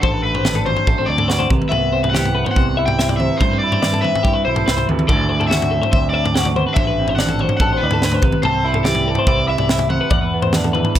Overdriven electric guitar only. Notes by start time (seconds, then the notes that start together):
0.02 A4
0.23 B4
0.66 C5
1.06 D5
1.69 E5
2.10 F#5
2.51 F#5
2.86 G5
3.17 E5
3.38 C5
3.59 D5
4.02 E5
4.45 C5
5.08 D5
5.47 E5
5.92 E5
6.10 D5
6.74 E5
7.15 F#5
7.57 F#5
7.77 B4
8.43 C5
8.84 D5
9.28 D5
9.48 E5
9.90 F#5